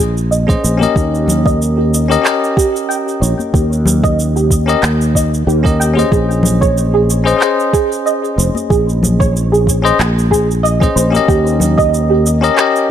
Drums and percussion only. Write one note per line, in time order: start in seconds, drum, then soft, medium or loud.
0.00 shaker medium
0.17 shaker soft
0.32 shaker soft
0.49 kick loud
0.49 shaker soft
0.65 shaker medium
0.81 high conga medium
0.81 shaker soft
0.96 kick loud
0.96 shaker soft
1.15 shaker soft
1.28 low conga medium
1.28 shaker medium
1.46 kick loud
1.46 shaker soft
1.62 shaker soft
1.94 shaker medium
2.12 shaker soft
2.25 clap medium
2.25 shaker soft
2.44 shaker soft
2.57 kick loud
2.57 shaker medium
2.76 shaker soft
2.91 shaker soft
3.08 shaker soft
3.23 shaker medium
3.39 high conga medium
3.39 shaker soft
3.54 kick loud
3.54 shaker soft
3.73 shaker soft
3.86 low conga medium
3.86 shaker medium
4.04 kick loud
4.04 shaker soft
4.19 shaker soft
4.37 shaker soft
4.51 kick medium
4.51 shaker medium
4.69 shaker soft
4.83 clap medium
4.83 shaker soft
5.01 shaker soft
5.15 kick medium
5.15 shaker medium
5.34 shaker soft
5.49 shaker soft
5.65 kick loud
5.65 shaker soft
5.81 shaker medium
5.98 high conga medium
5.98 shaker soft
6.12 kick loud
6.12 shaker soft
6.31 shaker soft
6.43 low conga medium
6.43 shaker medium
6.62 kick medium
6.62 shaker soft
6.78 shaker soft
7.10 shaker medium
7.27 shaker soft
7.41 clap medium
7.41 shaker soft
7.60 shaker soft
7.73 kick loud
7.73 shaker medium
7.92 shaker soft
8.07 shaker soft
8.25 shaker soft
8.39 shaker medium
8.55 high conga medium
8.55 shaker soft
8.70 kick loud
8.70 shaker soft
8.89 shaker soft
9.03 low conga medium
9.03 shaker medium
9.20 kick medium
9.20 shaker soft
9.37 shaker soft
9.54 shaker soft
9.67 kick medium
9.67 shaker medium
9.86 shaker soft
10.00 clap medium
10.00 shaker soft
10.19 shaker soft
10.32 kick medium
10.32 shaker medium
10.51 shaker soft
10.65 shaker soft
10.81 kick medium
10.81 shaker soft
10.97 shaker medium
11.14 high conga medium
11.14 shaker soft
11.28 kick loud
11.28 shaker soft
11.47 shaker soft
11.60 low conga medium
11.60 shaker medium
11.78 kick medium
11.78 shaker soft
11.94 shaker soft
12.26 shaker medium
12.44 shaker soft
12.58 clap medium
12.58 shaker soft
12.76 shaker soft